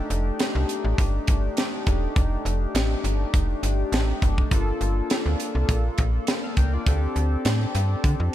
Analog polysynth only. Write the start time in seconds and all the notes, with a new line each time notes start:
Already playing: A3 D4 D#4 G4
4.51 A#3 D4 F4 A4
6.43 A4 F5
6.57 A#4 G5
6.73 F4 D5
6.86 C4 D4 G4 A4